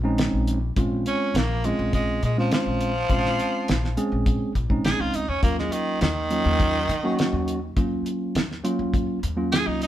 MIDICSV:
0, 0, Header, 1, 5, 480
1, 0, Start_track
1, 0, Key_signature, -5, "minor"
1, 0, Tempo, 583658
1, 629, Time_signature, 4, 2, 24, 8
1, 8117, End_track
2, 0, Start_track
2, 0, Title_t, "Tine electric piano"
2, 0, Program_c, 0, 4
2, 31, Note_on_c, 0, 56, 101
2, 34, Note_on_c, 0, 60, 90
2, 37, Note_on_c, 0, 61, 90
2, 39, Note_on_c, 0, 63, 110
2, 477, Note_off_c, 0, 56, 0
2, 479, Note_off_c, 0, 60, 0
2, 480, Note_off_c, 0, 61, 0
2, 481, Note_off_c, 0, 63, 0
2, 634, Note_on_c, 0, 56, 85
2, 636, Note_on_c, 0, 60, 74
2, 636, Note_on_c, 0, 61, 79
2, 638, Note_on_c, 0, 65, 88
2, 1168, Note_off_c, 0, 56, 0
2, 1169, Note_off_c, 0, 60, 0
2, 1169, Note_off_c, 0, 61, 0
2, 1170, Note_off_c, 0, 65, 0
2, 1353, Note_on_c, 0, 60, 77
2, 1354, Note_on_c, 0, 56, 79
2, 1357, Note_on_c, 0, 61, 66
2, 1357, Note_on_c, 0, 65, 93
2, 1798, Note_off_c, 0, 60, 0
2, 1799, Note_off_c, 0, 56, 0
2, 1800, Note_off_c, 0, 61, 0
2, 1800, Note_off_c, 0, 65, 0
2, 1952, Note_on_c, 0, 56, 90
2, 1955, Note_on_c, 0, 60, 82
2, 1956, Note_on_c, 0, 61, 72
2, 1957, Note_on_c, 0, 65, 86
2, 2397, Note_off_c, 0, 56, 0
2, 2399, Note_off_c, 0, 60, 0
2, 2399, Note_off_c, 0, 61, 0
2, 2400, Note_off_c, 0, 65, 0
2, 2550, Note_on_c, 0, 56, 63
2, 2553, Note_on_c, 0, 60, 69
2, 2553, Note_on_c, 0, 61, 59
2, 2556, Note_on_c, 0, 65, 77
2, 3086, Note_off_c, 0, 56, 0
2, 3087, Note_off_c, 0, 60, 0
2, 3087, Note_off_c, 0, 61, 0
2, 3088, Note_off_c, 0, 65, 0
2, 3265, Note_on_c, 0, 56, 95
2, 3268, Note_on_c, 0, 60, 85
2, 3270, Note_on_c, 0, 61, 79
2, 3271, Note_on_c, 0, 68, 104
2, 3714, Note_off_c, 0, 56, 0
2, 3715, Note_off_c, 0, 60, 0
2, 3716, Note_off_c, 0, 61, 0
2, 3716, Note_off_c, 0, 68, 0
2, 3863, Note_on_c, 0, 60, 78
2, 3866, Note_on_c, 0, 56, 78
2, 3867, Note_on_c, 0, 61, 78
2, 3871, Note_on_c, 0, 63, 93
2, 4312, Note_off_c, 0, 60, 0
2, 4314, Note_off_c, 0, 56, 0
2, 4314, Note_off_c, 0, 61, 0
2, 4316, Note_off_c, 0, 63, 0
2, 4461, Note_on_c, 0, 54, 71
2, 4464, Note_on_c, 0, 58, 63
2, 4469, Note_on_c, 0, 61, 60
2, 4471, Note_on_c, 0, 65, 80
2, 5001, Note_off_c, 0, 54, 0
2, 5003, Note_off_c, 0, 58, 0
2, 5005, Note_off_c, 0, 61, 0
2, 5006, Note_off_c, 0, 65, 0
2, 5184, Note_on_c, 0, 54, 81
2, 5187, Note_on_c, 0, 58, 65
2, 5189, Note_on_c, 0, 61, 74
2, 5192, Note_on_c, 0, 65, 79
2, 5633, Note_off_c, 0, 54, 0
2, 5635, Note_off_c, 0, 58, 0
2, 5635, Note_off_c, 0, 61, 0
2, 5637, Note_off_c, 0, 65, 0
2, 5787, Note_on_c, 0, 54, 92
2, 5788, Note_on_c, 0, 58, 89
2, 5789, Note_on_c, 0, 61, 96
2, 5793, Note_on_c, 0, 66, 113
2, 6234, Note_off_c, 0, 54, 0
2, 6235, Note_off_c, 0, 58, 0
2, 6235, Note_off_c, 0, 61, 0
2, 6238, Note_off_c, 0, 66, 0
2, 6386, Note_on_c, 0, 54, 85
2, 6388, Note_on_c, 0, 58, 79
2, 6389, Note_on_c, 0, 61, 76
2, 6390, Note_on_c, 0, 65, 83
2, 6923, Note_off_c, 0, 54, 0
2, 6925, Note_off_c, 0, 58, 0
2, 6925, Note_off_c, 0, 61, 0
2, 6926, Note_off_c, 0, 65, 0
2, 7103, Note_on_c, 0, 58, 89
2, 7104, Note_on_c, 0, 54, 98
2, 7107, Note_on_c, 0, 61, 80
2, 7109, Note_on_c, 0, 65, 109
2, 7552, Note_off_c, 0, 58, 0
2, 7553, Note_off_c, 0, 54, 0
2, 7555, Note_off_c, 0, 61, 0
2, 7556, Note_off_c, 0, 65, 0
2, 7703, Note_on_c, 0, 54, 88
2, 7704, Note_on_c, 0, 58, 77
2, 7707, Note_on_c, 0, 61, 80
2, 7709, Note_on_c, 0, 65, 94
2, 8117, Note_off_c, 0, 54, 0
2, 8117, Note_off_c, 0, 58, 0
2, 8117, Note_off_c, 0, 61, 0
2, 8117, Note_off_c, 0, 65, 0
2, 8117, End_track
3, 0, Start_track
3, 0, Title_t, "Tenor saxophone"
3, 0, Program_c, 1, 66
3, 883, Note_on_c, 1, 61, 88
3, 1123, Note_on_c, 1, 58, 82
3, 1135, Note_off_c, 1, 61, 0
3, 1360, Note_on_c, 1, 56, 86
3, 1373, Note_off_c, 1, 58, 0
3, 1587, Note_off_c, 1, 56, 0
3, 1597, Note_on_c, 1, 56, 84
3, 1825, Note_off_c, 1, 56, 0
3, 1847, Note_on_c, 1, 56, 77
3, 1950, Note_off_c, 1, 56, 0
3, 1969, Note_on_c, 1, 53, 85
3, 2071, Note_off_c, 1, 53, 0
3, 2084, Note_on_c, 1, 53, 102
3, 3482, Note_off_c, 1, 53, 0
3, 3991, Note_on_c, 1, 68, 87
3, 4115, Note_on_c, 1, 65, 84
3, 4127, Note_off_c, 1, 68, 0
3, 4237, Note_on_c, 1, 63, 77
3, 4249, Note_off_c, 1, 65, 0
3, 4350, Note_on_c, 1, 61, 81
3, 4362, Note_off_c, 1, 63, 0
3, 4460, Note_off_c, 1, 61, 0
3, 4469, Note_on_c, 1, 58, 85
3, 4580, Note_off_c, 1, 58, 0
3, 4598, Note_on_c, 1, 56, 76
3, 4707, Note_on_c, 1, 51, 87
3, 4719, Note_off_c, 1, 56, 0
3, 4940, Note_off_c, 1, 51, 0
3, 4950, Note_on_c, 1, 51, 108
3, 6356, Note_off_c, 1, 51, 0
3, 7829, Note_on_c, 1, 68, 88
3, 7952, Note_on_c, 1, 63, 77
3, 7964, Note_off_c, 1, 68, 0
3, 8062, Note_off_c, 1, 63, 0
3, 8083, Note_on_c, 1, 63, 88
3, 8117, Note_off_c, 1, 63, 0
3, 8117, End_track
4, 0, Start_track
4, 0, Title_t, "Upright bass"
4, 0, Program_c, 2, 32
4, 0, Note_on_c, 2, 34, 88
4, 232, Note_off_c, 2, 34, 0
4, 272, Note_on_c, 2, 34, 79
4, 594, Note_off_c, 2, 34, 0
4, 630, Note_on_c, 2, 34, 96
4, 845, Note_off_c, 2, 34, 0
4, 1104, Note_on_c, 2, 34, 101
4, 1429, Note_off_c, 2, 34, 0
4, 1472, Note_on_c, 2, 34, 98
4, 1794, Note_off_c, 2, 34, 0
4, 1831, Note_on_c, 2, 46, 97
4, 2045, Note_off_c, 2, 46, 0
4, 2188, Note_on_c, 2, 34, 84
4, 2511, Note_off_c, 2, 34, 0
4, 2545, Note_on_c, 2, 34, 89
4, 2762, Note_off_c, 2, 34, 0
4, 3035, Note_on_c, 2, 34, 82
4, 3247, Note_off_c, 2, 34, 0
4, 3387, Note_on_c, 2, 34, 81
4, 3603, Note_off_c, 2, 34, 0
4, 3745, Note_on_c, 2, 34, 88
4, 3962, Note_off_c, 2, 34, 0
4, 3986, Note_on_c, 2, 34, 78
4, 4095, Note_off_c, 2, 34, 0
4, 4106, Note_on_c, 2, 36, 80
4, 4214, Note_off_c, 2, 36, 0
4, 4225, Note_on_c, 2, 37, 73
4, 4334, Note_off_c, 2, 37, 0
4, 4346, Note_on_c, 2, 39, 76
4, 4454, Note_off_c, 2, 39, 0
4, 4462, Note_on_c, 2, 39, 87
4, 4680, Note_off_c, 2, 39, 0
4, 4947, Note_on_c, 2, 39, 104
4, 5270, Note_off_c, 2, 39, 0
4, 5308, Note_on_c, 2, 39, 105
4, 5631, Note_off_c, 2, 39, 0
4, 5667, Note_on_c, 2, 51, 104
4, 5882, Note_off_c, 2, 51, 0
4, 6026, Note_on_c, 2, 39, 82
4, 6350, Note_off_c, 2, 39, 0
4, 6389, Note_on_c, 2, 39, 82
4, 6604, Note_off_c, 2, 39, 0
4, 6869, Note_on_c, 2, 39, 83
4, 7084, Note_off_c, 2, 39, 0
4, 7231, Note_on_c, 2, 39, 91
4, 7445, Note_off_c, 2, 39, 0
4, 7592, Note_on_c, 2, 39, 93
4, 7913, Note_off_c, 2, 39, 0
4, 7948, Note_on_c, 2, 36, 78
4, 8117, Note_off_c, 2, 36, 0
4, 8117, End_track
5, 0, Start_track
5, 0, Title_t, "Drums"
5, 150, Note_on_c, 9, 42, 80
5, 160, Note_on_c, 9, 38, 105
5, 232, Note_off_c, 9, 42, 0
5, 242, Note_off_c, 9, 38, 0
5, 390, Note_on_c, 9, 42, 65
5, 472, Note_off_c, 9, 42, 0
5, 629, Note_on_c, 9, 42, 85
5, 630, Note_on_c, 9, 36, 106
5, 711, Note_off_c, 9, 42, 0
5, 712, Note_off_c, 9, 36, 0
5, 870, Note_on_c, 9, 42, 59
5, 953, Note_off_c, 9, 42, 0
5, 1110, Note_on_c, 9, 42, 79
5, 1120, Note_on_c, 9, 38, 103
5, 1193, Note_off_c, 9, 42, 0
5, 1202, Note_off_c, 9, 38, 0
5, 1350, Note_on_c, 9, 42, 55
5, 1432, Note_off_c, 9, 42, 0
5, 1589, Note_on_c, 9, 36, 99
5, 1589, Note_on_c, 9, 42, 74
5, 1671, Note_off_c, 9, 36, 0
5, 1671, Note_off_c, 9, 42, 0
5, 1831, Note_on_c, 9, 42, 52
5, 1913, Note_off_c, 9, 42, 0
5, 2068, Note_on_c, 9, 42, 69
5, 2078, Note_on_c, 9, 38, 103
5, 2150, Note_off_c, 9, 42, 0
5, 2160, Note_off_c, 9, 38, 0
5, 2307, Note_on_c, 9, 42, 59
5, 2389, Note_off_c, 9, 42, 0
5, 2546, Note_on_c, 9, 36, 108
5, 2546, Note_on_c, 9, 42, 80
5, 2628, Note_off_c, 9, 36, 0
5, 2628, Note_off_c, 9, 42, 0
5, 2676, Note_on_c, 9, 38, 30
5, 2759, Note_off_c, 9, 38, 0
5, 2791, Note_on_c, 9, 42, 62
5, 2874, Note_off_c, 9, 42, 0
5, 3029, Note_on_c, 9, 42, 78
5, 3039, Note_on_c, 9, 38, 106
5, 3111, Note_off_c, 9, 42, 0
5, 3121, Note_off_c, 9, 38, 0
5, 3160, Note_on_c, 9, 38, 33
5, 3242, Note_off_c, 9, 38, 0
5, 3267, Note_on_c, 9, 42, 66
5, 3350, Note_off_c, 9, 42, 0
5, 3505, Note_on_c, 9, 36, 109
5, 3505, Note_on_c, 9, 42, 82
5, 3587, Note_off_c, 9, 36, 0
5, 3588, Note_off_c, 9, 42, 0
5, 3744, Note_on_c, 9, 36, 73
5, 3745, Note_on_c, 9, 42, 58
5, 3827, Note_off_c, 9, 36, 0
5, 3827, Note_off_c, 9, 42, 0
5, 3865, Note_on_c, 9, 36, 82
5, 3947, Note_off_c, 9, 36, 0
5, 3985, Note_on_c, 9, 42, 83
5, 3995, Note_on_c, 9, 38, 91
5, 4067, Note_off_c, 9, 42, 0
5, 4077, Note_off_c, 9, 38, 0
5, 4224, Note_on_c, 9, 42, 64
5, 4306, Note_off_c, 9, 42, 0
5, 4463, Note_on_c, 9, 42, 80
5, 4464, Note_on_c, 9, 36, 110
5, 4546, Note_off_c, 9, 36, 0
5, 4546, Note_off_c, 9, 42, 0
5, 4594, Note_on_c, 9, 38, 31
5, 4677, Note_off_c, 9, 38, 0
5, 4705, Note_on_c, 9, 42, 67
5, 4788, Note_off_c, 9, 42, 0
5, 4943, Note_on_c, 9, 42, 76
5, 4953, Note_on_c, 9, 38, 101
5, 5026, Note_off_c, 9, 42, 0
5, 5036, Note_off_c, 9, 38, 0
5, 5185, Note_on_c, 9, 42, 58
5, 5267, Note_off_c, 9, 42, 0
5, 5426, Note_on_c, 9, 36, 107
5, 5426, Note_on_c, 9, 42, 75
5, 5508, Note_off_c, 9, 36, 0
5, 5508, Note_off_c, 9, 42, 0
5, 5669, Note_on_c, 9, 42, 58
5, 5751, Note_off_c, 9, 42, 0
5, 5910, Note_on_c, 9, 42, 73
5, 5920, Note_on_c, 9, 38, 97
5, 5993, Note_off_c, 9, 42, 0
5, 6003, Note_off_c, 9, 38, 0
5, 6150, Note_on_c, 9, 42, 54
5, 6232, Note_off_c, 9, 42, 0
5, 6387, Note_on_c, 9, 36, 115
5, 6387, Note_on_c, 9, 42, 76
5, 6469, Note_off_c, 9, 36, 0
5, 6469, Note_off_c, 9, 42, 0
5, 6628, Note_on_c, 9, 42, 58
5, 6711, Note_off_c, 9, 42, 0
5, 6869, Note_on_c, 9, 42, 80
5, 6879, Note_on_c, 9, 38, 102
5, 6951, Note_off_c, 9, 42, 0
5, 6961, Note_off_c, 9, 38, 0
5, 7003, Note_on_c, 9, 38, 33
5, 7085, Note_off_c, 9, 38, 0
5, 7110, Note_on_c, 9, 42, 61
5, 7193, Note_off_c, 9, 42, 0
5, 7349, Note_on_c, 9, 36, 99
5, 7352, Note_on_c, 9, 42, 72
5, 7431, Note_off_c, 9, 36, 0
5, 7434, Note_off_c, 9, 42, 0
5, 7592, Note_on_c, 9, 42, 62
5, 7674, Note_off_c, 9, 42, 0
5, 7832, Note_on_c, 9, 42, 89
5, 7842, Note_on_c, 9, 38, 97
5, 7915, Note_off_c, 9, 42, 0
5, 7924, Note_off_c, 9, 38, 0
5, 8073, Note_on_c, 9, 42, 67
5, 8117, Note_off_c, 9, 42, 0
5, 8117, End_track
0, 0, End_of_file